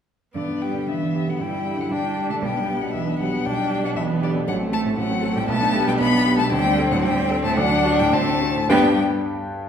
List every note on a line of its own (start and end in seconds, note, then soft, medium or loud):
0.35 0.86 G2 soft
0.35 0.43 D3 soft
0.35 0.84 B3 soft
0.35 0.63 D5 medium
0.48 0.69 D4 soft
0.62 0.90 G3 soft
0.62 0.83 G4 soft
0.62 0.88 G5 medium
0.74 0.95 D3 soft
0.88 1.38 G2 soft
0.88 1.29 E3 soft
0.88 1.42 B3 soft
0.88 1.31 E5 medium
1.01 1.22 D4 soft
1.14 1.35 G4 soft
1.27 1.48 D3 soft
1.27 1.39 F#3 soft
1.27 1.43 F#5 medium
1.39 1.89 G2 soft
1.39 1.79 G3 soft
1.39 1.93 E4 soft
1.39 1.82 G5 medium
1.52 1.73 D4 soft
1.65 1.86 G4 soft
1.77 1.98 D3 soft
1.77 1.89 F#3 soft
1.77 1.91 F#5 medium
1.90 2.41 G2 soft
1.90 2.30 G3 medium
1.90 2.44 D4 soft
1.90 2.29 G5 medium
2.04 2.25 D4 soft
2.16 2.37 G4 soft
2.29 2.43 D3 soft
2.29 2.43 A3 soft
2.29 2.35 A5 medium
2.42 2.92 B1 soft
2.42 2.81 G3 medium
2.42 2.94 B3 soft
2.42 2.83 G5 medium
2.55 2.76 D4 soft
2.68 2.89 G4 soft
2.81 3.02 B2 soft
2.81 2.93 F#3 soft
2.81 2.93 F#5 medium
2.93 3.45 B1 soft
2.93 3.01 E3 soft
2.93 3.47 B3 soft
2.93 3.19 E5 medium
3.07 3.28 D4 soft
3.19 3.28 F#3 medium
3.19 3.41 G4 soft
3.19 3.47 F#5 medium
3.33 3.53 B2 soft
3.45 3.94 B1 soft
3.45 3.85 G3 medium
3.45 3.98 D4 soft
3.45 3.84 G5 medium
3.58 3.78 D4 soft
3.70 3.91 G4 soft
3.83 4.04 B2 soft
3.83 3.98 F#3 medium
3.83 3.90 F#5 medium
3.95 4.45 B1 soft
3.95 4.24 E3 medium
3.95 4.46 B3 medium
3.95 4.04 E5 medium
4.08 4.29 D4 soft
4.21 4.47 D3 medium
4.21 4.42 G4 soft
4.21 4.31 D5 medium
4.35 4.47 B2 soft
4.47 4.96 A1 medium
4.47 4.55 F#3 medium
4.47 4.96 A3 medium
4.47 4.56 F#5 medium
4.60 4.80 C4 soft
4.72 4.97 A3 medium
4.72 4.93 A4 soft
4.72 4.81 A5 medium
4.85 5.05 A2 soft
4.97 5.47 A1 medium
4.97 5.37 F#3 medium
4.97 5.50 A3 medium
4.97 5.39 F#5 medium
5.10 5.30 C4 soft
5.22 5.43 A4 medium
5.35 5.48 A2 soft
5.35 5.48 G3 medium
5.35 5.48 G5 medium
5.48 5.99 B1 medium
5.48 5.88 A3 medium
5.48 6.51 B3 medium
5.48 5.87 A5 loud
5.61 5.82 D4 medium
5.74 5.95 G4 medium
5.87 6.08 B2 soft
5.87 6.00 G3 medium
5.87 5.93 G5 medium
5.99 6.51 B1 medium
5.99 6.39 B3 medium
5.99 6.38 B5 loud
6.13 6.34 D4 soft
6.26 6.47 G4 medium
6.38 6.52 B2 medium
6.38 6.51 A3 medium
6.38 6.52 A5 medium
6.52 7.03 D2 medium
6.52 6.90 G3 medium
6.52 7.59 C4 medium
6.52 6.91 G5 loud
6.64 6.86 D4 soft
6.78 6.99 A4 medium
6.90 7.12 A2 medium
6.90 7.04 F#3 medium
6.90 7.02 F#5 medium
7.02 7.56 D2 medium
7.02 7.42 G3 medium
7.02 7.43 G5 medium
7.17 7.39 D4 medium
7.31 7.53 A4 medium
7.42 7.58 A2 medium
7.42 7.58 A3 medium
7.42 7.56 A5 medium
7.56 8.11 D2 medium
7.56 8.00 F#3 medium
7.56 8.14 D4 medium
7.56 8.01 F#5 loud
7.71 7.94 D4 medium
7.85 8.07 F#4 medium
7.98 8.22 A2 medium
7.98 8.11 G3 medium
7.98 8.15 G5 medium
8.12 8.68 D2 medium
8.12 8.68 A3 medium
8.12 8.48 C4 medium
8.12 8.69 A5 loud
8.27 8.50 D4 medium
8.42 8.64 F#4 soft
8.55 8.69 A2 soft
8.69 9.00 G2 medium
8.69 9.00 G3 medium
8.69 9.00 B3 medium
8.69 9.00 D4 medium
8.69 9.00 G4 medium
8.69 9.00 B4 medium
8.69 9.00 G5 medium